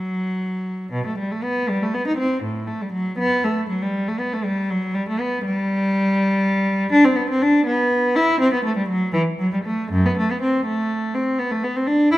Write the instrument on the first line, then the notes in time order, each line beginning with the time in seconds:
cello
Already playing: F#3
0.92 B2
1.06 A3
1.18 G3
1.32 A3
1.43 B3
1.69 G3
1.82 A3
1.94 B3
2.07 D#4
2.18 C4
2.43 A2
2.67 A3
2.81 G3
2.93 F#3
3.18 B3
3.44 A3
3.69 F#3
3.82 G3
4.08 A3
4.19 B3
4.33 A3
4.44 G3
4.70 F#3
4.94 G3
5.08 A3
5.20 B3
5.45 G3
6.92 D4
7.04 C4
7.15 B3
7.30 C4
7.42 D4
7.66 B3
8.15 E4
8.40 C4
8.53 B3
8.65 A3
8.77 G3
8.89 F#3
9.13 E3
9.39 F#3
9.53 G3
9.64 A3
9.91 F#2
10.06 B3
10.17 A3
10.31 B3
10.42 C4
10.66 A3
11.14 C4
11.39 B3
11.51 A3
11.63 B3
11.76 C4
11.87 D4
12.12 E4